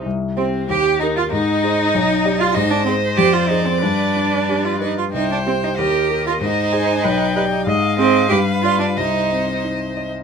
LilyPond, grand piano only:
\new Staff \with { instrumentName = "Grand piano" } { \time 2/4 \key c \minor \tempo 4 = 94 c,8 <g' c''>8 ees,8 <g' bes'>8 | aes,8 <aes' c''>8 b,,8 <g' d''>8 | aes,8 <aes' c''>8 f,8 <aes' c''>8 | g,8 d'8 g'8 b'8 |
c,8 <g' c''>8 ees,8 <g' bes'>8 | aes,8 <aes' c''>8 b,,8 <g' d''>8 | aes,8 <aes' c''>8 g,8 <f' d''>8 | c,8 c'8 ees'8 ees''8 | }